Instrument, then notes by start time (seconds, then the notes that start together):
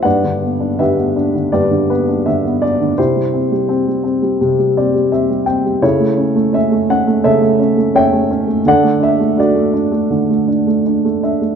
grand piano
0.03 G2 B4 D5 F#5
0.24 D3
0.42 B3
0.60 D4
0.79 D3 G4 B4 E5
0.97 B3
1.16 D4
1.34 D3
1.52 G2 G4 B4 D5
1.71 D3
1.90 B3 B4
2.09 D4
2.26 D3 E5
2.45 B3
2.62 D4 D5
2.80 D3
2.98 C3 E4 G4 C5
3.16 G3
3.34 C4
3.51 G3
3.69 C4
3.87 G3
4.04 C4
4.22 G3
4.41 C3
4.59 G3
4.77 C4 D5
4.94 G3
5.12 C4 E5
5.30 G3
5.46 C4 G5
5.65 G3
5.82 C#3 E4 A4 C#5
6.00 A3
6.17 C#4
6.35 A3
6.53 C#4 E5
6.71 A3
6.90 C#4 F#5
7.07 A3
7.24 C#3 A4 C#5 E5
7.42 A3
7.60 C#4
7.77 A3
7.94 C#4 C#5 E5 G5
8.13 A3
8.31 C#4
8.47 A3
8.66 D3 A4 D5 F#5
8.83 A3
9.00 D4 E5
9.19 A3
9.37 D4 F#4 A4 D5
9.55 A3
9.74 D4
9.91 A3
10.10 D3
10.30 A3
10.48 D4
10.67 A3
10.86 D4
11.05 A3
11.23 D4 E5
11.41 A3